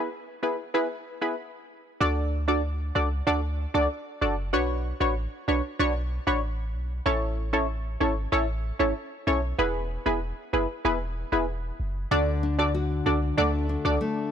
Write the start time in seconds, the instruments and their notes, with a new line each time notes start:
0.43 synth stab B3 E4 G#4 B4
0.74 synth stab B3 E4 G#4 B4
1.21 synth stab B3 E4 G#4 B4
2.00 808-style bass D2, synth stab D4 F#4 A4 D5
2.48 synth stab D4 F#4 A4 D5
2.95 808-style bass C#2, synth stab D4 F#4 A4 D5
3.27 808-style bass D2, synth stab D4 F#4 A4 D5
3.74 808-style bass C#2, synth stab D4 F#4 A4 D5
4.21 808-style bass F#1, synth stab D4 F#4 A4 D5
4.53 808-style bass B1, synth stab D4 F#4 B4 C#5
5.00 808-style bass A1, synth stab D4 F#4 B4 C#5
5.48 808-style bass B1, synth stab D4 F#4 B4 C#5
5.79 808-style bass B1, synth stab D4 F#4 B4 C#5
6.27 808-style bass A1, synth stab D4 F#4 B4 C#5
6.74 808-style bass B1
7.06 808-style bass A1, synth stab C#4 E4 A4 C#5
7.53 synth stab C#4 E4 A4 C#5
8.00 808-style bass G#1, synth stab C#4 E4 A4 C#5
8.32 808-style bass A1, synth stab C#4 E4 A4 C#5
8.79 808-style bass G#1, synth stab C#4 E4 A4 C#5
9.27 808-style bass B1, synth stab C#4 E4 A4 C#5
9.58 808-style bass E1, synth stab B3 E4 G#4 B4
10.06 808-style bass E1, synth stab B3 E4 G#4 B4
10.53 808-style bass F#1, synth stab B3 E4 G#4 B4
10.85 808-style bass E1, synth stab B3 E4 G#4 B4
11.32 808-style bass E1, synth stab B3 E4 G#4 B4
11.80 808-style bass F#1
12.11 808-style bass D2, nylon-string guitar D3, synth stab D4 F#4 A4 D5
12.43 nylon-string guitar D4
12.59 synth stab D4 F#4 A4 D5
12.74 nylon-string guitar F#4
13.06 808-style bass C#2, synth stab D4 F#4 A4 D5, nylon-string guitar D4
13.38 808-style bass D2, nylon-string guitar A3, synth stab D4 F#4 A4 D5
13.69 nylon-string guitar D4
13.85 808-style bass C#2, synth stab D4 F#4 A4 D5
14.01 nylon-string guitar A3